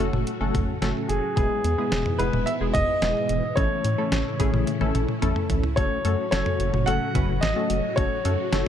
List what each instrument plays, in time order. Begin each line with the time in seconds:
Already playing: string machine A2 C#3 F#3 C#4 F#4, grand piano A4
0.00 analog synth bass F#1, analog polysynth A3 C#4 F#4 A4
0.13 analog synth bass F#1, mid tom
0.27 closed hi-hat
0.41 analog synth bass F#1, analog polysynth A3 C#4 F#4 A4
0.54 analog synth bass F#1, kick, closed hi-hat, mid tom
0.82 analog synth bass F#1, analog polysynth A3 C#4 F#4 A4, snare, closed hi-hat
1.09 analog synth bass F#1, grand piano G#4, closed hi-hat
1.36 analog synth bass E1, string machine G#2 B2 E3 B3 E4, analog polysynth G#3 B3 E4 G#4, grand piano G#4, kick, closed hi-hat
1.64 analog synth bass E2, closed hi-hat
1.78 analog polysynth G#3 B3 E4 G#4
1.92 analog synth bass E1, snare, closed hi-hat
2.06 mid tom
2.18 analog synth bass E1, analog polysynth G#3 B3 E4 G#4, grand piano B4, closed hi-hat
2.33 analog synth bass E1, mid tom
2.46 grand piano E5, closed hi-hat
2.61 analog synth bass E1, analog polysynth G#3 B3 E4 G#4
2.74 analog synth bass E1, grand piano D#5, kick, closed hi-hat, mid tom
3.02 analog synth bass E1, analog polysynth G#3 B3 E4 G#4, snare, closed hi-hat
3.29 analog synth bass E1, closed hi-hat
3.56 analog synth bass A1, string machine A2 C#3 C#4 E4, analog polysynth A3 C#4 E4 A4, grand piano C#5, kick, closed hi-hat
3.84 analog synth bass A2, closed hi-hat
3.98 analog polysynth A3 C#4 E4 A4
4.12 analog synth bass A1, snare, closed hi-hat
4.39 analog synth bass A1, analog polysynth A3 C#4 E4 G#4, kick, closed hi-hat
4.54 analog synth bass A1, mid tom
4.67 closed hi-hat, high tom
4.81 analog synth bass A1, analog polysynth A3 C#4 E4 A4, high tom
4.95 analog synth bass A1, closed hi-hat, mid tom
5.08 mid tom
5.22 analog synth bass A1, analog polysynth A3 C#4 E4 A4, closed hi-hat, mid tom
5.36 mid tom
5.50 analog synth bass A1, closed hi-hat, floor tom
5.64 floor tom
5.76 analog synth bass F#1, string machine A2 C#3 F#3 C#4 F#4, analog polysynth A3 C#4 F#4 A4, grand piano C#5, kick, closed hi-hat
6.05 analog synth bass F#2, analog polysynth A3 C#4 F#4 A4, closed hi-hat
6.31 analog synth bass F#1, analog polysynth A3 C#4 F#4 A4, grand piano C#5, snare, closed hi-hat
6.46 mid tom
6.60 analog synth bass F#1, closed hi-hat
6.74 analog synth bass F#1, mid tom
6.86 analog synth bass F#1, analog polysynth A3 C#4 F#4 A4, grand piano F#5, closed hi-hat
7.15 analog synth bass F#1, analog polysynth A3 C#4 F#4 B4, kick, closed hi-hat, mid tom
7.29 analog synth bass F#1
7.41 analog synth bass A1, grand piano D#5, snare, closed hi-hat
7.56 analog polysynth A3 C#4 F#4 A4
7.70 analog synth bass F#1, closed hi-hat
7.96 analog synth bass F#1, analog polysynth A3 C#4 F#4 A4, string machine D#4, grand piano C#5, kick, closed hi-hat
8.25 analog synth bass F#2, analog polysynth A3 C#4 F#4 A4, closed hi-hat
8.52 analog synth bass F#1, analog polysynth A3 C#4 F#4 A4, snare, closed hi-hat